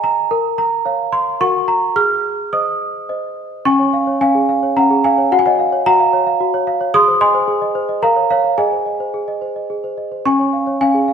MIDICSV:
0, 0, Header, 1, 2, 480
1, 0, Start_track
1, 0, Key_signature, -5, "major"
1, 0, Tempo, 556586
1, 261, Time_signature, 3, 2, 24, 8
1, 4107, Tempo, 548446
1, 9683, End_track
2, 0, Start_track
2, 0, Title_t, "Celesta"
2, 0, Program_c, 0, 8
2, 0, Control_c, 0, 64, 127
2, 0, Note_on_c, 0, 68, 92
2, 0, Note_on_c, 0, 75, 59
2, 0, Note_on_c, 0, 80, 90
2, 0, Note_on_c, 0, 82, 115
2, 0, Note_on_c, 0, 84, 98
2, 31, Note_off_c, 0, 82, 0
2, 31, Note_on_c, 0, 82, 93
2, 229, Note_off_c, 0, 75, 0
2, 266, Note_on_c, 0, 70, 84
2, 274, Control_c, 0, 64, 0
2, 277, Note_off_c, 0, 68, 0
2, 280, Note_off_c, 0, 80, 0
2, 283, Note_off_c, 0, 84, 0
2, 420, Control_c, 0, 64, 127
2, 491, Note_off_c, 0, 82, 0
2, 502, Note_on_c, 0, 82, 97
2, 721, Note_off_c, 0, 70, 0
2, 736, Note_on_c, 0, 73, 54
2, 740, Note_on_c, 0, 77, 61
2, 970, Note_on_c, 0, 84, 100
2, 973, Note_off_c, 0, 82, 0
2, 1176, Note_off_c, 0, 73, 0
2, 1178, Note_off_c, 0, 77, 0
2, 1209, Note_off_c, 0, 84, 0
2, 1213, Note_on_c, 0, 66, 69
2, 1213, Note_on_c, 0, 70, 53
2, 1214, Note_on_c, 0, 85, 109
2, 1218, Note_on_c, 0, 78, 55
2, 1224, Control_c, 0, 64, 0
2, 1378, Control_c, 0, 64, 127
2, 1448, Note_on_c, 0, 82, 95
2, 1452, Note_off_c, 0, 85, 0
2, 1660, Note_off_c, 0, 70, 0
2, 1663, Note_off_c, 0, 78, 0
2, 1680, Note_off_c, 0, 66, 0
2, 1688, Note_on_c, 0, 68, 79
2, 1690, Note_on_c, 0, 89, 109
2, 1692, Note_off_c, 0, 82, 0
2, 1707, Control_c, 0, 64, 0
2, 1868, Control_c, 0, 64, 127
2, 2163, Note_off_c, 0, 68, 0
2, 2178, Note_off_c, 0, 89, 0
2, 2179, Note_on_c, 0, 72, 50
2, 2180, Note_on_c, 0, 87, 80
2, 2184, Note_on_c, 0, 75, 57
2, 2632, Note_off_c, 0, 72, 0
2, 2634, Note_off_c, 0, 75, 0
2, 2665, Note_on_c, 0, 72, 49
2, 2667, Note_off_c, 0, 87, 0
2, 2668, Note_on_c, 0, 75, 53
2, 3115, Note_off_c, 0, 72, 0
2, 3117, Note_off_c, 0, 75, 0
2, 3151, Note_on_c, 0, 85, 120
2, 3152, Note_on_c, 0, 61, 83
2, 3162, Note_on_c, 0, 80, 87
2, 3166, Control_c, 0, 64, 0
2, 3271, Note_on_c, 0, 73, 50
2, 3319, Control_c, 0, 64, 127
2, 3391, Note_on_c, 0, 77, 60
2, 3462, Note_off_c, 0, 73, 0
2, 3510, Note_on_c, 0, 73, 63
2, 3582, Note_off_c, 0, 77, 0
2, 3602, Note_off_c, 0, 80, 0
2, 3621, Note_off_c, 0, 61, 0
2, 3630, Note_off_c, 0, 85, 0
2, 3631, Note_on_c, 0, 61, 61
2, 3632, Note_on_c, 0, 80, 105
2, 3641, Note_on_c, 0, 77, 74
2, 3702, Note_off_c, 0, 73, 0
2, 3750, Note_on_c, 0, 68, 56
2, 3861, Note_off_c, 0, 77, 0
2, 3871, Note_on_c, 0, 77, 58
2, 3942, Note_off_c, 0, 68, 0
2, 3992, Note_on_c, 0, 73, 54
2, 4062, Note_off_c, 0, 77, 0
2, 4102, Note_off_c, 0, 61, 0
2, 4109, Note_off_c, 0, 80, 0
2, 4110, Note_on_c, 0, 82, 101
2, 4113, Note_on_c, 0, 61, 61
2, 4123, Note_on_c, 0, 78, 75
2, 4183, Note_off_c, 0, 73, 0
2, 4232, Note_on_c, 0, 68, 56
2, 4341, Note_off_c, 0, 78, 0
2, 4351, Note_off_c, 0, 82, 0
2, 4354, Note_on_c, 0, 80, 109
2, 4363, Note_on_c, 0, 77, 74
2, 4423, Note_off_c, 0, 68, 0
2, 4472, Note_on_c, 0, 73, 59
2, 4577, Note_off_c, 0, 61, 0
2, 4580, Note_off_c, 0, 77, 0
2, 4591, Note_off_c, 0, 73, 0
2, 4591, Note_off_c, 0, 80, 0
2, 4594, Note_on_c, 0, 66, 80
2, 4597, Note_on_c, 0, 78, 112
2, 4603, Control_c, 0, 64, 0
2, 4654, Note_off_c, 0, 78, 0
2, 4655, Note_on_c, 0, 80, 99
2, 4713, Note_off_c, 0, 80, 0
2, 4714, Note_on_c, 0, 78, 87
2, 4716, Note_on_c, 0, 73, 52
2, 4726, Note_on_c, 0, 75, 66
2, 4747, Control_c, 0, 64, 127
2, 4831, Note_on_c, 0, 77, 60
2, 4904, Note_off_c, 0, 73, 0
2, 4949, Note_on_c, 0, 73, 60
2, 5021, Note_off_c, 0, 77, 0
2, 5050, Note_off_c, 0, 75, 0
2, 5060, Note_off_c, 0, 66, 0
2, 5069, Note_off_c, 0, 78, 0
2, 5070, Note_on_c, 0, 66, 69
2, 5070, Note_on_c, 0, 82, 123
2, 5079, Note_on_c, 0, 78, 79
2, 5139, Note_off_c, 0, 73, 0
2, 5189, Note_on_c, 0, 77, 62
2, 5306, Note_on_c, 0, 73, 62
2, 5379, Note_off_c, 0, 77, 0
2, 5424, Note_on_c, 0, 77, 57
2, 5497, Note_off_c, 0, 73, 0
2, 5533, Note_off_c, 0, 66, 0
2, 5544, Note_on_c, 0, 66, 64
2, 5615, Note_off_c, 0, 77, 0
2, 5663, Note_on_c, 0, 73, 62
2, 5778, Note_on_c, 0, 77, 66
2, 5852, Note_off_c, 0, 73, 0
2, 5897, Note_on_c, 0, 73, 57
2, 5969, Note_off_c, 0, 77, 0
2, 5989, Note_off_c, 0, 78, 0
2, 6004, Note_off_c, 0, 66, 0
2, 6014, Note_on_c, 0, 87, 127
2, 6015, Note_on_c, 0, 68, 92
2, 6017, Note_off_c, 0, 73, 0
2, 6020, Note_off_c, 0, 82, 0
2, 6026, Note_on_c, 0, 84, 104
2, 6035, Control_c, 0, 64, 0
2, 6135, Note_on_c, 0, 72, 53
2, 6203, Control_c, 0, 64, 127
2, 6239, Note_off_c, 0, 84, 0
2, 6247, Note_on_c, 0, 75, 61
2, 6250, Note_on_c, 0, 84, 118
2, 6253, Note_off_c, 0, 87, 0
2, 6257, Note_on_c, 0, 80, 88
2, 6326, Note_off_c, 0, 72, 0
2, 6366, Note_on_c, 0, 72, 67
2, 6441, Note_off_c, 0, 75, 0
2, 6473, Note_off_c, 0, 68, 0
2, 6484, Note_on_c, 0, 68, 73
2, 6560, Note_off_c, 0, 72, 0
2, 6604, Note_on_c, 0, 75, 64
2, 6723, Note_on_c, 0, 72, 65
2, 6798, Note_off_c, 0, 75, 0
2, 6843, Note_on_c, 0, 75, 57
2, 6918, Note_off_c, 0, 72, 0
2, 6935, Note_off_c, 0, 80, 0
2, 6950, Note_off_c, 0, 68, 0
2, 6962, Note_on_c, 0, 70, 75
2, 6963, Note_on_c, 0, 82, 99
2, 6966, Note_off_c, 0, 75, 0
2, 6966, Note_off_c, 0, 84, 0
2, 6973, Note_on_c, 0, 77, 80
2, 6982, Control_c, 0, 64, 0
2, 7082, Note_on_c, 0, 73, 57
2, 7114, Control_c, 0, 64, 127
2, 7195, Note_off_c, 0, 77, 0
2, 7206, Note_off_c, 0, 82, 0
2, 7207, Note_off_c, 0, 73, 0
2, 7208, Note_on_c, 0, 77, 90
2, 7218, Note_on_c, 0, 73, 67
2, 7318, Note_off_c, 0, 73, 0
2, 7329, Note_on_c, 0, 73, 54
2, 7432, Note_off_c, 0, 70, 0
2, 7447, Note_on_c, 0, 80, 92
2, 7448, Note_on_c, 0, 68, 73
2, 7449, Note_off_c, 0, 77, 0
2, 7450, Note_off_c, 0, 73, 0
2, 7456, Note_on_c, 0, 75, 71
2, 7466, Control_c, 0, 64, 0
2, 7569, Note_on_c, 0, 72, 42
2, 7614, Control_c, 0, 64, 127
2, 7683, Note_off_c, 0, 75, 0
2, 7693, Note_on_c, 0, 75, 49
2, 7764, Note_off_c, 0, 72, 0
2, 7817, Note_on_c, 0, 72, 51
2, 7887, Note_off_c, 0, 75, 0
2, 7927, Note_off_c, 0, 68, 0
2, 7937, Note_on_c, 0, 68, 53
2, 8011, Note_off_c, 0, 72, 0
2, 8060, Note_on_c, 0, 75, 49
2, 8179, Note_on_c, 0, 72, 49
2, 8254, Note_off_c, 0, 75, 0
2, 8306, Note_on_c, 0, 75, 44
2, 8374, Note_off_c, 0, 72, 0
2, 8417, Note_off_c, 0, 68, 0
2, 8422, Note_off_c, 0, 80, 0
2, 8428, Note_on_c, 0, 68, 48
2, 8498, Note_off_c, 0, 75, 0
2, 8550, Note_on_c, 0, 72, 49
2, 8669, Note_on_c, 0, 75, 45
2, 8743, Note_off_c, 0, 72, 0
2, 8792, Note_on_c, 0, 72, 41
2, 8864, Note_off_c, 0, 75, 0
2, 8899, Note_off_c, 0, 68, 0
2, 8913, Note_off_c, 0, 72, 0
2, 8914, Note_on_c, 0, 85, 106
2, 8915, Note_on_c, 0, 61, 72
2, 8925, Note_on_c, 0, 80, 80
2, 8928, Control_c, 0, 64, 0
2, 9036, Note_on_c, 0, 73, 45
2, 9096, Control_c, 0, 64, 127
2, 9155, Note_on_c, 0, 77, 51
2, 9227, Note_off_c, 0, 73, 0
2, 9277, Note_on_c, 0, 73, 55
2, 9346, Note_off_c, 0, 77, 0
2, 9366, Note_off_c, 0, 80, 0
2, 9390, Note_off_c, 0, 61, 0
2, 9393, Note_off_c, 0, 85, 0
2, 9400, Note_on_c, 0, 80, 97
2, 9401, Note_on_c, 0, 61, 60
2, 9410, Note_on_c, 0, 77, 71
2, 9465, Note_off_c, 0, 73, 0
2, 9517, Note_on_c, 0, 68, 52
2, 9626, Note_off_c, 0, 77, 0
2, 9637, Note_on_c, 0, 77, 52
2, 9683, Note_off_c, 0, 61, 0
2, 9683, Note_off_c, 0, 68, 0
2, 9683, Note_off_c, 0, 77, 0
2, 9683, Note_off_c, 0, 80, 0
2, 9683, End_track
0, 0, End_of_file